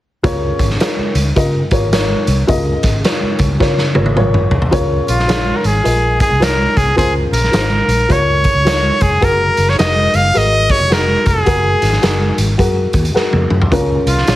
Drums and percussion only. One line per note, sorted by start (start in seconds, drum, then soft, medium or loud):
0.24 kick medium
0.24 closed hi-hat medium
0.59 kick medium
0.59 closed hi-hat medium
0.70 snare soft
0.80 snare loud
0.80 closed hi-hat medium
1.15 closed hi-hat medium
1.36 kick medium
1.36 closed hi-hat medium
1.71 kick medium
1.71 closed hi-hat medium
1.93 snare loud
1.93 closed hi-hat loud
2.27 closed hi-hat medium
2.48 kick loud
2.48 closed hi-hat medium
2.83 kick loud
2.83 snare soft
2.83 closed hi-hat medium
3.04 snare loud
3.04 closed hi-hat medium
3.39 kick medium
3.39 closed hi-hat medium
3.60 kick medium
3.60 snare medium
3.78 snare soft
3.95 high tom medium
4.06 high tom medium
4.17 mid tom medium
4.34 mid tom medium
4.51 floor tom medium
4.62 floor tom medium
4.72 kick loud
4.72 closed hi-hat medium
5.08 closed hi-hat medium
5.19 snare soft
5.29 snare loud
5.29 closed hi-hat medium
5.64 closed hi-hat medium
5.85 closed hi-hat medium
6.20 kick medium
6.20 closed hi-hat medium
6.42 snare loud
6.42 closed hi-hat medium
6.77 kick medium
6.77 closed hi-hat medium
6.98 kick medium
6.98 closed hi-hat medium
7.33 closed hi-hat medium
7.44 snare soft
7.53 snare loud
7.53 closed hi-hat medium
7.89 closed hi-hat medium
8.10 kick medium
8.10 closed hi-hat medium
8.44 kick medium
8.44 closed hi-hat medium
8.67 snare loud
8.67 closed hi-hat medium
9.01 kick medium
9.01 closed hi-hat medium
9.22 kick medium
9.22 closed hi-hat medium
9.57 closed hi-hat medium
9.69 snare soft
9.79 snare loud
9.79 closed hi-hat medium
10.14 closed hi-hat medium
10.35 closed hi-hat medium
10.69 kick medium
10.69 closed hi-hat medium
10.92 snare loud
10.92 closed hi-hat medium
11.26 kick medium
11.26 closed hi-hat medium
11.46 kick medium
11.46 closed hi-hat medium
11.82 snare soft
11.82 closed hi-hat medium
11.93 snare soft
12.03 snare loud
12.03 closed hi-hat medium
12.38 closed hi-hat medium
12.59 kick medium
12.59 closed hi-hat medium
12.93 kick medium
12.93 closed hi-hat medium
13.05 closed hi-hat soft
13.16 snare soft
13.33 high tom medium
13.50 mid tom medium
13.62 floor tom medium
13.72 kick loud
13.72 closed hi-hat medium
14.07 closed hi-hat medium
14.18 snare soft
14.27 snare loud
14.27 closed hi-hat medium